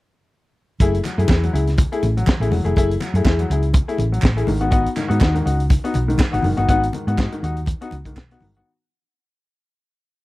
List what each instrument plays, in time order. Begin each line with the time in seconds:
0.80 fingered electric bass F#1, grand piano A3 E4 G#4, kick, closed hi-hat
0.94 closed hi-hat
1.04 grand piano F#3, clap, closed hi-hat, muted conga
1.18 fingered electric bass F#2, grand piano A3 E4 G#4, closed hi-hat
1.28 fingered electric bass E2, grand piano E4 G#4, kick, snare, clap, high conga
1.43 grand piano F#3, closed hi-hat
1.53 fingered electric bass C#2, grand piano E4 G#4, closed hi-hat
1.67 snare, closed hi-hat
1.78 kick, closed hi-hat, muted conga
1.92 grand piano A3 E4 G#4, closed hi-hat
2.03 fingered electric bass A1, closed hi-hat, muted conga
2.17 grand piano F#3, closed hi-hat
2.27 kick, snare, clap, high conga
2.40 fingered electric bass A1, grand piano A3 E4 G#4, closed hi-hat
2.51 fingered electric bass E1, grand piano F#3, open hi-hat, high conga
2.64 fingered electric bass F1, grand piano A3 E4 G#4, closed hi-hat
2.76 fingered electric bass F#1, grand piano A3 E4 G#4, kick, closed hi-hat, muted conga
2.91 closed hi-hat
3.00 grand piano F#3, clap, closed hi-hat, muted conga
3.14 fingered electric bass F#2, grand piano A3 E4 G#4, closed hi-hat
3.25 fingered electric bass E2, grand piano E4 G#4, kick, snare, clap, high conga
3.39 grand piano F#3, closed hi-hat
3.50 fingered electric bass C#2, grand piano E4 G#4, closed hi-hat
3.63 closed hi-hat
3.74 kick, closed hi-hat, muted conga
3.88 grand piano A3 E4 G#4, closed hi-hat
3.98 fingered electric bass A1, closed hi-hat, muted conga
4.12 grand piano F#3, closed hi-hat
4.22 fingered electric bass A1, kick, snare, clap, high conga
4.37 grand piano A3 E4 G#4, closed hi-hat
4.46 fingered electric bass G#1, grand piano G#2 D#3, open hi-hat, high conga
4.61 grand piano B3 D#4 F#4, closed hi-hat
4.70 grand piano B3 D#4 F#4, kick, closed hi-hat, muted conga
4.86 closed hi-hat
4.96 grand piano G#2 D#3, clap, closed hi-hat, muted conga
5.08 fingered electric bass G#2, grand piano B3 D#4 F#4, closed hi-hat
5.19 fingered electric bass D#2, grand piano D#4 F#4, kick, snare, clap, high conga
5.34 grand piano G#2 D#3, closed hi-hat
5.45 fingered electric bass C#2, grand piano D#4 F#4, closed hi-hat
5.60 closed hi-hat
5.70 kick, closed hi-hat, muted conga
5.84 grand piano B3 D#4 F#4, closed hi-hat
5.94 fingered electric bass B1, closed hi-hat, muted conga
6.08 grand piano G#2 D#3, closed hi-hat
6.18 kick, snare, clap, high conga
6.31 fingered electric bass G#1, grand piano B3 D#4 F#4, closed hi-hat
6.42 fingered electric bass F#1, grand piano G#2 D#3, open hi-hat, high conga
6.57 fingered electric bass G1, grand piano B3 D#4 F#4, closed hi-hat
6.69 fingered electric bass G#1, grand piano B3 D#4 F#4, kick, closed hi-hat
6.83 closed hi-hat
6.93 grand piano G#2 D#3, closed hi-hat, muted conga
7.07 fingered electric bass G#2, grand piano B3 D#4 F#4, closed hi-hat
7.18 grand piano D#4 F#4, kick, snare, clap, high conga
7.32 grand piano G#2 D#3, closed hi-hat
7.43 fingered electric bass D#2, grand piano D#4 F#4, closed hi-hat
7.57 closed hi-hat
7.66 kick, closed hi-hat, muted conga
7.81 grand piano B3 D#4 F#4, closed hi-hat
7.91 fingered electric bass C#2, closed hi-hat, muted conga
8.05 grand piano G#2 D#3, kick, closed hi-hat
8.16 fingered electric bass B1, kick, snare, clap, high conga
8.31 grand piano B3 D#4 F#4, closed hi-hat
8.41 fingered electric bass G1, grand piano G#2 D#3, open hi-hat, high conga
8.54 grand piano B3 D#4 F#4, closed hi-hat